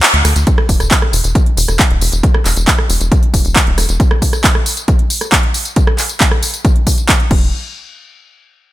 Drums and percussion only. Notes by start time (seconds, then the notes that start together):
0.03 clap, open hi-hat, ride, tambourine
0.14 closed hi-hat
0.25 cross-stick, open hi-hat, ride, tambourine
0.36 closed hi-hat, tambourine
0.47 kick, closed hi-hat, tambourine
0.58 cross-stick
0.69 kick, open hi-hat, tambourine
0.80 cross-stick, closed hi-hat, tambourine
0.91 kick, clap, closed hi-hat, tambourine
1.02 cross-stick
1.13 open hi-hat, tambourine
1.24 closed hi-hat, tambourine
1.35 kick, closed hi-hat, tambourine
1.46 closed hi-hat
1.57 open hi-hat, tambourine
1.68 cross-stick, closed hi-hat, tambourine
1.79 kick, clap, closed hi-hat, tambourine
1.90 closed hi-hat
2.01 open hi-hat, tambourine
2.12 closed hi-hat, tambourine
2.23 kick, closed hi-hat, tambourine
2.34 cross-stick
2.46 clap, open hi-hat, tambourine
2.57 closed hi-hat, tambourine
2.68 kick, clap, closed hi-hat, tambourine
2.79 cross-stick
2.90 open hi-hat, tambourine
3.01 closed hi-hat, tambourine
3.12 kick, closed hi-hat, tambourine
3.23 closed hi-hat
3.34 kick, open hi-hat, tambourine
3.45 closed hi-hat, tambourine
3.56 kick, clap, closed hi-hat, tambourine
3.67 closed hi-hat
3.78 cross-stick, open hi-hat, tambourine
3.89 closed hi-hat, tambourine
4.00 kick, closed hi-hat, tambourine
4.11 cross-stick
4.22 kick, open hi-hat, tambourine
4.33 cross-stick, closed hi-hat, tambourine
4.44 kick, clap, closed hi-hat, tambourine
4.55 cross-stick
4.66 open hi-hat, tambourine
4.77 closed hi-hat, tambourine
4.88 kick, closed hi-hat, tambourine
4.99 closed hi-hat
5.10 open hi-hat, tambourine
5.21 cross-stick, closed hi-hat, tambourine
5.32 kick, clap, closed hi-hat, tambourine
5.43 closed hi-hat
5.54 open hi-hat, tambourine
5.65 closed hi-hat, tambourine
5.76 kick, closed hi-hat, tambourine
5.87 cross-stick
5.98 clap, open hi-hat, tambourine
6.09 closed hi-hat, tambourine
6.20 kick, clap, closed hi-hat, tambourine
6.32 cross-stick
6.43 open hi-hat, tambourine
6.54 closed hi-hat, tambourine
6.65 kick, closed hi-hat, tambourine
6.76 closed hi-hat
6.87 kick, open hi-hat, tambourine
6.98 closed hi-hat, tambourine
7.09 kick, clap, closed hi-hat, tambourine
7.20 closed hi-hat
7.31 kick, crash